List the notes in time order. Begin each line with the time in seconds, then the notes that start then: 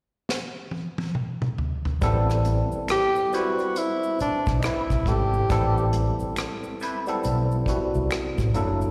0.29 snare
0.71 high tom
0.98 high tom
1.15 mid tom
1.42 mid tom
1.58 floor tom
1.85 floor tom
2.01 A1 G3 B3 C4 E4 A4, kick, closed hi-hat, shaker
2.30 cross-stick, shaker
2.45 closed hi-hat, shaker
2.72 muted fingered electric bass stroke, shaker
2.88 G4, finger snap, muted clean electric guitar stroke, cross-stick, closed hi-hat, shaker
3.16 shaker
3.32 G3 C4 E4 F#4 B4 C5, closed hi-hat, shaker
3.58 closed hi-hat, shaker
3.76 E4, closed hi-hat, shaker
4.03 shaker
4.19 D4, muted fingered electric bass stroke, closed hi-hat, shaker
4.46 B1, kick, shaker
4.59 D#4, finger snap, shaker
4.64 G3 C4 E4 B4, cross-stick, closed hi-hat
4.90 C2, kick, cross-stick, shaker
5.06 G#1 G3 B3 C4 E4 G4 A4, kick, closed hi-hat, shaker
5.33 shaker
5.50 A1 G3 B3 C4 E4 A4, kick, closed hi-hat, shaker
5.78 shaker
5.93 closed hi-hat, shaker
6.20 muted fingered electric bass stroke, shaker
6.36 finger snap, muted clean electric guitar stroke, cross-stick, closed hi-hat, shaker
6.63 shaker
6.80 G3 C4 E4 B4, closed hi-hat, shaker
7.06 G3 B3 C4 E4 A4, closed hi-hat, shaker
7.23 B1, closed hi-hat, shaker
7.51 shaker
7.66 G3 B3 C4 E4 F#4, kick, closed hi-hat, shaker
7.94 C2, shaker
8.11 finger snap, cross-stick, closed hi-hat, shaker
8.38 A1, kick, closed hi-hat, shaker
8.54 F#1 F#3 A#3 D4 E4 A4, closed hi-hat, shaker
8.81 shaker